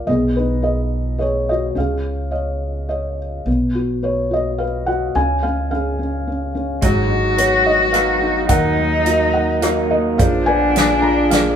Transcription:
0.07 upright bass B1, felt piano B3 G#4 D#5
0.36 felt piano D#4 B4
0.62 felt piano G#4 B4 D#5
1.18 felt piano G#4 B4 C#5 D#5
1.22 felt piano G#4
1.49 felt piano F#4 D#5
1.75 upright bass C#2, felt piano C#4 G#4 F5
2.31 felt piano C#5 D#5 F5
2.89 felt piano C#5 D#5 F5
3.46 upright bass B1, felt piano B3
3.75 felt piano F#4
4.03 felt piano B4 C#5
4.31 felt piano F#4 D#5
4.58 felt piano B4 F5
4.86 felt piano F#4 F#5
5.15 upright bass C#2, felt piano C#4 F5 G#5
5.43 felt piano C#4 F5
5.71 felt piano C#4 F5
5.75 felt piano G#4
5.99 felt piano C#4
6.27 felt piano C#4
6.55 felt piano C#4
6.82 upright bass G#1, clean electric guitar F#3 D#4, felt piano G#3, cello F#4, kick, closed hi-hat
7.10 felt piano D#4
7.38 clean electric guitar B3, felt piano B4 C#5, closed hi-hat
7.66 felt piano D#4 D#5
7.93 clean electric guitar F#3 B3 D#4, felt piano B4 F5, cross-stick, closed hi-hat
8.21 clean electric guitar D#4, felt piano D#4
8.49 upright bass D#2, felt piano D#3 A#4 F#5, clean electric guitar F#3 D#4, cello D#4, kick, closed hi-hat
8.78 felt piano A#3
9.05 clean electric guitar A#3, felt piano F#4, closed hi-hat
9.34 felt piano A#3 F#5
9.62 clean electric guitar F#3 A#3 D#4, felt piano F#4 F5, cross-stick, closed hi-hat
9.91 felt piano A#3 D#5, clean electric guitar D#4
10.18 upright bass A#1, clean electric guitar F3, felt piano A#3 G#4 D5 F5, cello D4, kick, closed hi-hat
10.46 clean electric guitar B3, felt piano F4 B4 D5 G#5
10.75 felt piano A#3, clean electric guitar D4 G#4, snare, closed hi-hat
11.02 felt piano F4 A#5
11.30 felt piano A#3 G#4 D5 F5, clean electric guitar D4, snare, closed hi-hat

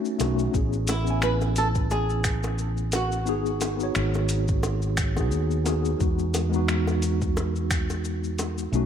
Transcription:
Already playing: tine electric piano A3 C#4 D#4 F#4 A4
0.05 cabasa
0.18 fretless electric bass B1, tine electric piano A3 C#4 D#4 F#4, closed hi-hat, high bongo, cabasa
0.39 cabasa
0.52 fretless electric bass A1, tine electric piano B3 C#4 E4 G#4, kick, cabasa
0.73 cabasa
0.87 nylon-string guitar E4, closed hi-hat, high bongo, cabasa
1.04 tine electric piano B3 C#4, cabasa
1.09 tine electric piano E4 G#5
1.22 nylon-string guitar B4, finger snap, cabasa
1.41 high bongo, cabasa
1.56 nylon-string guitar A4, closed hi-hat, cabasa
1.75 kick, cabasa
1.90 nylon-string guitar G#4, high bongo, cabasa
2.10 cabasa
2.24 finger snap, kick, closed hi-hat, cabasa
2.43 high bongo, cabasa
2.58 cabasa
2.77 cabasa
2.92 nylon-string guitar F#4, closed hi-hat, high bongo, cabasa
3.12 cabasa
3.25 fretless electric bass G#1, tine electric piano B3 D#4 F#4 G#4, cabasa
3.46 cabasa
3.61 closed hi-hat, high bongo, cabasa
3.77 tine electric piano B3 D#4, cabasa
3.81 tine electric piano F#4 C#5
3.95 fretless electric bass G#1, finger snap, cabasa
4.14 high bongo, cabasa
4.29 closed hi-hat, cabasa
4.48 kick, cabasa
4.63 high bongo, cabasa
4.82 cabasa
4.97 finger snap, kick, closed hi-hat, cabasa
5.15 tine electric piano B3 D#4 F#4 G#4, kick, high bongo, cabasa
5.31 fretless electric bass D#2, cabasa
5.51 cabasa
5.64 tine electric piano B3 D#4 F#4 G#4, closed hi-hat, high bongo, cabasa
5.85 cabasa
5.98 fretless electric bass E2, tine electric piano G#3 B3 D#4 F#4, kick, cabasa
6.19 cabasa
6.34 closed hi-hat, high bongo, cabasa
6.49 tine electric piano G#3 B3, cabasa
6.54 tine electric piano D#4 F#4
6.68 finger snap, cabasa
6.87 high bongo, cabasa
7.02 closed hi-hat, cabasa
7.21 kick, cabasa
7.37 high bongo, cabasa
7.56 cabasa
7.71 finger snap, kick, closed hi-hat, cabasa
7.90 high bongo, cabasa
8.05 cabasa
8.24 cabasa
8.38 closed hi-hat, high bongo, cabasa
8.58 cabasa
8.72 fretless electric bass B1, tine electric piano A3 C#4 D#4 F#4, cabasa

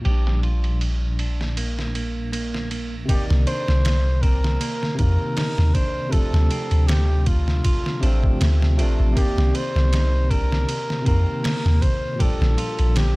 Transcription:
0.01 tine electric piano A#2 F3, clean electric guitar G4, ride
0.06 808-style bass A#1, tine electric piano G3
0.11 tine electric piano D4
0.27 snare
0.43 clean electric guitar F4, ride
0.64 ride
0.81 ride
1.19 clean electric guitar D4, ride
1.41 snare
1.57 clean electric guitar A#3, ride
1.79 snare
1.95 clean electric guitar A#3, ride
2.32 clean electric guitar A#3, ride
2.54 snare
2.71 clean electric guitar A#3, ride
3.05 tine electric piano C3 D#3, clean electric guitar D#4, kick, ride
3.09 tine electric piano A#3, muted trumpet G4
3.15 tine electric piano D5
3.30 808-style bass C2, snare
3.47 clean electric guitar D4, muted trumpet C5, ride
3.68 808-style bass C2, snare
3.85 snare, ride
4.22 clean electric guitar C4, muted trumpet A#4, kick, ride
4.44 snare
4.61 clean electric guitar A#3, ride
4.83 snare
4.95 tine electric piano C3 D#3, muted trumpet A#4, kick, ride
4.99 808-style bass F2, tine electric piano A#3
5.37 clean electric guitar D#4, snare, open hi-hat
5.58 808-style bass D#2, snare
5.74 clean electric guitar D4, muted trumpet C5, kick, ride
6.09 tine electric piano C3 F3, muted trumpet A4, kick, ride
6.15 tine electric piano A3 D4
6.34 808-style bass D2, snare
6.51 clean electric guitar C4, ride
6.71 808-style bass D2, ride
6.87 clean electric guitar A3, muted trumpet G4, snare, ride
7.26 muted trumpet F4, kick, ride
7.48 snare
7.64 clean electric guitar F4, kick, ride
7.86 snare
8.01 808-style bass A1, tine electric piano C3 F3 A3, clean electric guitar D4, ride
8.06 tine electric piano C4
8.24 kick
8.41 808-style bass D2, snare, ride
8.62 snare
8.77 808-style bass A1, tine electric piano C3 F3 A3, clean electric guitar C4, ride
8.82 tine electric piano D4
9.00 808-style bass A1
9.12 tine electric piano C3 D#3, clean electric guitar A#3
9.17 tine electric piano A#3, muted trumpet G4, kick, ride
9.21 tine electric piano D5
9.37 808-style bass C2, snare
9.55 muted trumpet C5, ride
9.76 808-style bass C2, snare
9.92 clean electric guitar D#4, snare, ride
10.30 clean electric guitar D4, muted trumpet A#4, kick, ride
10.52 snare
10.69 ride
10.90 snare
11.02 tine electric piano C3 D#3, clean electric guitar C4
11.06 808-style bass F2, tine electric piano A#3, muted trumpet A#4, kick, ride
11.43 clean electric guitar A#3, snare, open hi-hat
11.65 808-style bass D#2, snare
11.82 muted trumpet C5, kick, ride
12.16 tine electric piano A#2 F3, clean electric guitar G4
12.20 tine electric piano G3, muted trumpet A4, kick, ride
12.25 tine electric piano D4
12.41 808-style bass A#1, snare
12.58 clean electric guitar F4, ride
12.79 808-style bass A#1, ride
12.96 muted trumpet G4, snare, ride

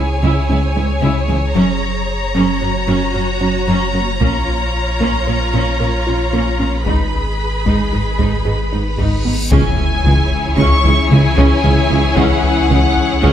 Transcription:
Already playing: sub bass C#2, synth arpeggio sound C#4, viola section G#4, violin section C#5 G#5
0.23 cello section C#2, synth arpeggio sound C#3, viola section E4
0.49 cello section C#2, synth arpeggio sound C#4, viola section E4
0.76 cello section C#2, synth arpeggio sound G#3, viola section E4
1.02 cello section C#2, synth arpeggio sound C#3, viola section E4
1.29 cello section C#2, synth arpeggio sound E3, viola section E4
1.55 sub bass F#1, cello section F#2, synth arpeggio sound F#3, viola section C#4, violin section A#5
2.35 cello section F#2, synth arpeggio sound F#3, viola section C#4
2.61 cello section F#2, viola section C#4 F#4, synth arpeggio sound F#4
2.88 cello section F#2, synth arpeggio sound F#3, viola section C#4
3.14 cello section F#2, viola section C#4, synth arpeggio sound F#4
3.40 cello section F#2, synth arpeggio sound C#4, viola section C#4
3.67 cello section F#2, synth arpeggio sound F#3, viola section C#4
3.94 cello section F#2, synth arpeggio sound A#3, viola section C#4
4.20 sub bass A#1, cello section A#2, synth arpeggio sound A#3, viola section C#4 F4, violin section C#5, taiko
5.00 cello section A#2, synth arpeggio sound A#3, viola section C#4, taiko
5.27 cello section A#2, viola section C#4, synth arpeggio sound A#4
5.54 cello section A#2, synth arpeggio sound A#3, viola section C#4
5.80 cello section A#2, viola section C#4, synth arpeggio sound A#4
6.07 cello section A#2, viola section C#4, synth arpeggio sound F4
6.33 cello section A#2, synth arpeggio sound A#3, viola section C#4
6.60 cello section A#2, synth arpeggio sound C#4, viola section C#4
6.86 sub bass G#1, cello section G#2, synth arpeggio sound G#3, viola section D#4 G#4, violin section B4 B5, taiko, reverse cymbal
7.66 cello section G#2, synth arpeggio sound G#3, viola section D#4, taiko
7.93 cello section G#2, viola section D#4, synth arpeggio sound G#4
8.19 cello section G#2, synth arpeggio sound G#3, viola section D#4, taiko
8.45 cello section G#2, viola section D#4, synth arpeggio sound G#4
8.72 cello section G#2, synth arpeggio sound D#4, viola section D#4
8.98 cello section G#2, synth arpeggio sound G#3, viola section D#4, taiko
9.25 cello section G#2, synth arpeggio sound B3, viola section D#4
9.51 sub bass C#2, analog synth bass C#2, double bass section C#2, tuba C#2, synth arpeggio sound C#3, cello section C#3, french horn section E3 C#4, viola section C#4 E4, violin section G#4 C#5 G#5, taiko, impact
9.78 analog synth bass C#2
10.04 analog synth bass C#2, tuba C#2, double bass section C#2, cello section C#3, synth arpeggio sound E3, viola section G#3
10.31 analog synth bass C#2
10.57 double bass section C#2, tuba C#2, analog synth bass C#2, synth arpeggio sound C#3, cello section C#3, viola section C#4, violin section C#6, taiko
10.84 double bass section C#2, analog synth bass C#2, tuba C#2, cello section C#3, synth arpeggio sound E3, viola section C#4
11.11 double bass section C#2, tuba C#2, analog synth bass C#3, cello section C#3, viola section G#3, synth arpeggio sound G#3, violin section G#5
11.37 tuba C#2, double bass section C#2, analog synth bass C#2, cello section C#3, synth arpeggio sound C#3, viola section C#4, taiko
11.63 tuba C#2, double bass section C#2, analog synth bass C#3, cello section C#3, synth arpeggio sound G#3, viola section C#4
11.90 tuba C#2, double bass section C#2, analog synth bass C#2, cello section C#3, synth arpeggio sound E3, viola section G#3
12.16 tuba C#2, analog synth bass C#2, double bass section C#2, cello section C#3, synth arpeggio sound C#3, viola section C#4, violin section F#5, taiko
12.43 analog synth bass C#2
12.70 tuba C#2, double bass section C#2, analog synth bass C#2, cello section C#3, synth arpeggio sound E3, viola section G#3
12.97 analog synth bass C#2
13.23 tuba C#2, double bass section C#2, analog synth bass C#2, synth arpeggio sound C#3, cello section C#3, viola section C#4, taiko

